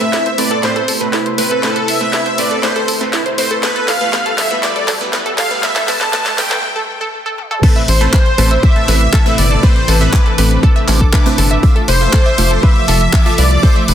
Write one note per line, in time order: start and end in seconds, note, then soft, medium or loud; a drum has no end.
0.00 0.12 A2 medium
0.00 3.59 C3 medium
0.00 3.59 A3 medium
0.00 0.12 A3 medium
0.00 6.59 B3 medium
0.00 0.12 C4 medium
0.00 3.59 E4 medium
0.00 6.59 B4 medium
0.00 0.12 B4 medium
0.00 0.35 E5 loud
0.00 closed hi-hat soft
0.00 riser medium
0.13 0.20 E4 medium
0.13 snare medium
0.13 closed hi-hat medium
0.26 0.33 C5 medium
0.26 closed hi-hat soft
0.38 0.61 A2 medium
0.38 0.61 A3 medium
0.38 0.61 C4 medium
0.38 0.61 B4 medium
0.38 0.62 D5 medium
0.38 0.64 D5 loud
0.38 open hi-hat loud
0.51 0.55 A4 loud
0.51 closed hi-hat soft
0.63 0.82 A2 medium
0.63 0.82 A3 medium
0.63 0.82 C4 medium
0.63 0.82 B4 medium
0.63 0.86 C5 medium
0.63 snare soft
0.63 closed hi-hat medium
0.76 0.80 A4 medium
0.76 closed hi-hat soft
0.88 0.99 A4 medium
0.88 open hi-hat loud
1.01 1.12 A2 medium
1.01 1.12 A3 medium
1.01 1.12 C4 medium
1.01 1.12 B4 medium
1.01 closed hi-hat soft
1.13 1.20 E4 medium
1.13 snare medium
1.13 closed hi-hat medium
1.26 1.33 C5 medium
1.26 closed hi-hat soft
1.38 1.61 A2 medium
1.38 1.61 A3 medium
1.38 1.61 C4 medium
1.38 1.61 B4 medium
1.38 1.61 B4 loud
1.38 1.61 B4 medium
1.38 open hi-hat loud
1.51 1.55 A4 medium
1.51 closed hi-hat soft
1.63 1.82 A2 medium
1.63 1.82 A3 medium
1.63 1.82 C4 medium
1.63 1.87 A4 loud
1.63 1.89 A4 loud
1.63 1.82 B4 loud
1.63 snare medium
1.63 closed hi-hat medium
1.76 1.80 A4 medium
1.76 closed hi-hat soft
1.88 1.99 A4 medium
1.88 2.40 E5 loud
1.88 2.38 E5 loud
1.88 open hi-hat medium
2.01 2.12 A2 medium
2.01 2.12 A3 medium
2.01 2.12 C4 medium
2.01 2.12 B4 medium
2.01 closed hi-hat soft
2.13 2.20 E4 medium
2.13 snare medium
2.13 closed hi-hat medium
2.26 2.33 C5 medium
2.26 closed hi-hat soft
2.38 2.61 A2 medium
2.38 2.61 A3 medium
2.38 2.61 C4 medium
2.38 2.61 B4 medium
2.38 2.61 D5 loud
2.38 open hi-hat medium
2.51 2.55 A4 medium
2.51 closed hi-hat soft
2.63 2.82 A2 medium
2.63 2.82 A3 medium
2.63 2.82 C4 medium
2.63 2.82 B4 medium
2.63 2.86 C5 medium
2.63 2.87 C5 medium
2.63 snare medium
2.63 closed hi-hat medium
2.76 2.80 A4 medium
2.76 closed hi-hat soft
2.88 2.99 A4 medium
2.88 open hi-hat loud
3.01 3.12 A2 medium
3.01 3.12 A3 medium
3.01 3.12 C4 medium
3.01 3.12 B4 medium
3.01 closed hi-hat soft
3.13 3.20 E4 loud
3.13 snare medium
3.13 closed hi-hat medium
3.26 3.33 C5 medium
3.26 closed hi-hat soft
3.38 3.61 A2 medium
3.38 3.61 A3 medium
3.38 3.61 C4 medium
3.38 3.61 B4 medium
3.38 3.49 C5 medium
3.38 open hi-hat loud
3.51 3.55 A4 loud
3.51 closed hi-hat soft
3.63 3.82 A2 medium
3.63 6.60 E3 medium
3.63 6.60 G3 medium
3.63 3.82 A3 medium
3.63 3.82 B3 medium
3.63 6.60 G4 medium
3.63 3.82 B4 loud
3.63 3.88 B4 loud
3.63 3.89 B4 loud
3.63 snare medium
3.63 closed hi-hat medium
3.76 3.80 A4 loud
3.76 closed hi-hat soft
3.88 3.99 A4 medium
3.88 4.40 F5 loud
3.88 4.38 F5 loud
3.88 snare medium
3.88 open hi-hat medium
4.01 4.11 A2 medium
4.01 4.11 A3 medium
4.01 4.11 B3 medium
4.01 4.11 B4 medium
4.01 closed hi-hat soft
4.13 4.32 A2 medium
4.13 4.32 A3 medium
4.13 4.32 B3 medium
4.13 4.32 B4 loud
4.13 snare medium
4.13 closed hi-hat medium
4.26 4.30 A4 loud
4.26 closed hi-hat soft
4.38 4.49 A4 medium
4.38 4.64 E5 loud
4.38 4.63 E5 medium
4.38 snare medium
4.38 open hi-hat loud
4.51 4.61 A2 medium
4.51 4.61 A3 medium
4.51 4.61 B3 medium
4.51 4.61 B4 medium
4.51 closed hi-hat soft
4.63 4.82 A2 medium
4.63 4.82 A3 medium
4.63 4.82 B3 medium
4.63 4.82 B4 loud
4.63 4.86 D5 medium
4.63 snare medium
4.63 closed hi-hat medium
4.76 4.80 A4 medium
4.76 closed hi-hat soft
4.88 4.99 A4 medium
4.88 snare medium
4.88 open hi-hat loud
5.01 5.11 A2 medium
5.01 5.11 A3 medium
5.01 5.11 B3 medium
5.01 5.11 B4 medium
5.01 closed hi-hat soft
5.13 5.32 A2 medium
5.13 5.32 A3 medium
5.13 5.32 B3 medium
5.13 5.32 B4 loud
5.13 snare medium
5.13 closed hi-hat medium
5.26 5.30 A4 loud
5.26 closed hi-hat soft
5.38 5.49 A4 medium
5.38 5.63 F5 loud
5.38 5.64 F5 medium
5.38 snare medium
5.38 open hi-hat loud
5.51 5.61 A2 medium
5.51 5.61 A3 medium
5.51 5.61 B3 medium
5.51 5.61 B4 medium
5.51 closed hi-hat soft
5.63 5.82 A2 medium
5.63 5.82 A3 medium
5.63 5.82 B3 medium
5.63 5.82 B4 loud
5.63 5.88 E5 medium
5.63 5.89 E5 loud
5.63 snare medium
5.63 closed hi-hat medium
5.76 5.80 A4 loud
5.76 snare medium
5.76 closed hi-hat soft
5.88 6.07 A2 medium
5.88 6.07 A3 medium
5.88 6.07 B3 medium
5.88 6.07 B4 loud
5.88 6.38 A5 loud
5.88 6.40 A5 loud
5.88 snare medium
5.88 open hi-hat loud
6.01 6.05 A4 loud
6.01 snare medium
6.01 closed hi-hat soft
6.13 6.32 A2 medium
6.13 6.32 A3 medium
6.13 6.32 B3 medium
6.13 6.32 B4 loud
6.13 snare loud
6.13 closed hi-hat medium
6.26 6.30 A4 loud
6.26 snare medium
6.26 closed hi-hat soft
6.38 6.57 A2 medium
6.38 6.57 A3 medium
6.38 6.57 B3 medium
6.38 6.57 B4 loud
6.38 6.64 G5 medium
6.38 6.64 G5 loud
6.38 snare loud
6.38 open hi-hat loud
6.51 6.55 A4 loud
6.51 snare medium
6.51 closed hi-hat soft
6.76 6.80 A4 loud
7.01 7.05 A4 loud
7.26 7.30 A4 loud
7.38 high tom medium
7.51 7.55 A4 loud
7.51 mid tom medium
7.63 7.82 A2 medium
7.63 11.59 C3 medium
7.63 11.59 E3 medium
7.63 13.94 A3 medium
7.63 7.82 A3 medium
7.63 7.82 C4 medium
7.63 9.61 E4 medium
7.63 7.74 A4 loud
7.63 7.82 B4 loud
7.63 7.74 A5 medium
7.63 13.94 D6 medium
7.63 kick loud
7.63 closed hi-hat medium
7.63 crash loud
7.76 7.86 E5 loud
7.76 7.86 E6 medium
7.76 closed hi-hat soft
7.88 8.08 A1 loud
7.88 8.65 C5 loud
7.88 8.63 C5 loud
7.88 open hi-hat loud
8.01 8.12 A2 medium
8.01 8.12 A3 medium
8.01 8.12 C4 medium
8.01 8.08 A4 medium
8.01 8.12 B4 medium
8.01 8.08 A5 medium
8.01 closed hi-hat soft
8.13 8.17 B4 medium
8.13 8.17 B5 medium
8.13 kick loud
8.13 clap loud
8.13 closed hi-hat medium
8.26 closed hi-hat soft
8.38 8.58 A1 medium
8.38 8.85 A2 medium
8.38 8.85 A3 medium
8.38 8.85 C4 medium
8.38 8.49 A4 medium
8.38 8.85 B4 medium
8.38 8.49 A5 medium
8.38 open hi-hat loud
8.51 8.61 E5 loud
8.51 8.61 E6 medium
8.51 closed hi-hat soft
8.63 9.40 E5 loud
8.63 9.38 E5 loud
8.63 kick loud
8.63 closed hi-hat medium
8.76 8.83 A4 medium
8.76 8.83 A5 medium
8.76 closed hi-hat soft
8.88 9.08 A1 loud
8.88 9.00 A2 medium
8.88 9.00 A3 medium
8.88 9.00 C4 medium
8.88 8.92 B4 medium
8.88 9.00 B4 medium
8.88 8.92 B5 medium
8.88 open hi-hat loud
9.01 closed hi-hat soft
9.13 9.24 A4 loud
9.13 9.24 A5 medium
9.13 kick loud
9.13 clap loud
9.13 closed hi-hat medium
9.26 9.60 A2 medium
9.26 9.60 A3 medium
9.26 9.60 C4 medium
9.26 9.60 B4 loud
9.26 9.36 E5 loud
9.26 9.36 E6 medium
9.26 closed hi-hat soft
9.38 9.58 G1 medium
9.38 9.64 D5 medium
9.38 9.63 D5 loud
9.38 open hi-hat loud
9.51 9.58 A4 medium
9.51 9.58 A5 medium
9.51 closed hi-hat soft
9.63 9.82 A2 medium
9.63 9.82 A3 medium
9.63 9.82 C4 medium
9.63 11.61 D4 medium
9.63 9.67 B4 medium
9.63 9.82 B4 loud
9.63 9.89 C5 loud
9.63 9.88 C5 loud
9.63 9.67 B5 medium
9.63 kick loud
9.63 closed hi-hat medium
9.76 closed hi-hat soft
9.88 10.08 A1 loud
9.88 9.99 A4 loud
9.88 10.59 B4 medium
9.88 9.99 A5 medium
9.88 open hi-hat loud
10.01 10.12 A2 medium
10.01 10.12 A3 medium
10.01 10.12 C4 medium
10.01 10.12 B4 medium
10.01 10.11 E5 loud
10.01 10.11 E6 medium
10.01 closed hi-hat soft
10.13 kick loud
10.13 clap loud
10.13 closed hi-hat medium
10.26 10.33 A4 medium
10.26 10.33 A5 medium
10.26 closed hi-hat soft
10.38 10.58 A1 medium
10.38 10.85 A2 medium
10.38 10.85 A3 medium
10.38 10.85 C4 medium
10.38 10.85 B4 medium
10.38 10.42 B4 medium
10.38 10.42 B5 medium
10.38 open hi-hat loud
10.51 closed hi-hat soft
10.63 10.74 A4 loud
10.63 10.74 A5 medium
10.63 kick loud
10.63 closed hi-hat medium
10.76 10.86 E5 loud
10.76 10.86 E6 medium
10.76 closed hi-hat soft
10.88 11.08 A1 loud
10.88 11.00 A2 medium
10.88 11.00 A3 medium
10.88 11.00 C4 medium
10.88 11.00 B4 medium
10.88 clap medium
10.88 open hi-hat loud
11.01 11.08 A4 medium
11.01 11.08 A5 medium
11.01 kick medium
11.01 closed hi-hat soft
11.13 11.17 B4 medium
11.13 11.17 B5 medium
11.13 kick loud
11.13 clap loud
11.13 closed hi-hat medium
11.26 11.60 A2 medium
11.26 11.60 A3 medium
11.26 11.60 C4 medium
11.26 11.60 B4 loud
11.26 closed hi-hat soft
11.38 11.58 G1 medium
11.38 11.49 A4 loud
11.38 11.49 A5 medium
11.38 open hi-hat loud
11.51 11.61 E5 loud
11.51 11.61 E6 medium
11.51 closed hi-hat soft
11.63 13.94 C3 medium
11.63 13.94 F3 medium
11.63 11.82 A3 medium
11.63 13.94 F4 medium
11.63 11.82 F4 medium
11.63 13.94 E5 medium
11.63 11.82 E5 loud
11.63 kick loud
11.63 closed hi-hat medium
11.76 11.83 A4 medium
11.76 11.83 A5 medium
11.76 closed hi-hat soft
11.88 12.08 F1 loud
11.88 11.92 B4 medium
11.88 12.63 C5 loud
11.88 12.65 C5 loud
11.88 11.92 B5 medium
11.88 open hi-hat loud
12.01 12.12 A3 medium
12.01 12.12 F4 medium
12.01 12.12 E5 medium
12.01 closed hi-hat soft
12.13 12.24 A4 medium
12.13 12.24 A5 medium
12.13 kick loud
12.13 clap loud
12.13 closed hi-hat medium
12.26 12.36 E5 loud
12.26 12.36 E6 medium
12.26 closed hi-hat soft
12.38 12.58 F1 medium
12.38 12.85 A3 medium
12.38 12.85 F4 medium
12.38 12.85 E5 medium
12.38 open hi-hat loud
12.51 12.58 A4 medium
12.51 12.58 A5 medium
12.51 closed hi-hat soft
12.63 12.67 B4 medium
12.63 13.40 E5 loud
12.63 13.38 E5 loud
12.63 12.67 B5 medium
12.63 kick loud
12.63 closed hi-hat medium
12.76 closed hi-hat soft
12.88 13.08 F1 loud
12.88 13.00 A3 medium
12.88 13.00 F4 medium
12.88 12.99 A4 loud
12.88 13.00 E5 medium
12.88 12.99 A5 medium
12.88 open hi-hat loud
13.01 13.11 E5 loud
13.01 13.11 E6 medium
13.01 closed hi-hat soft
13.13 kick loud
13.13 clap loud
13.13 closed hi-hat medium
13.26 13.60 A3 medium
13.26 13.60 F4 medium
13.26 13.33 A4 medium
13.26 13.60 E5 loud
13.26 13.33 A5 medium
13.26 closed hi-hat soft
13.38 13.58 C2 medium
13.38 13.42 B4 medium
13.38 13.61 D5 loud
13.38 13.62 D5 loud
13.38 13.42 B5 medium
13.38 open hi-hat loud
13.51 closed hi-hat soft
13.63 13.82 A3 medium
13.63 13.82 F4 medium
13.63 13.74 A4 loud
13.63 13.74 C5 loud
13.63 13.82 E5 loud
13.63 13.74 A5 medium
13.63 kick loud
13.63 closed hi-hat medium
13.76 13.86 E5 loud
13.76 13.86 E6 medium
13.76 closed hi-hat soft
13.88 13.94 F1 loud
13.88 13.94 B4 medium
13.88 open hi-hat loud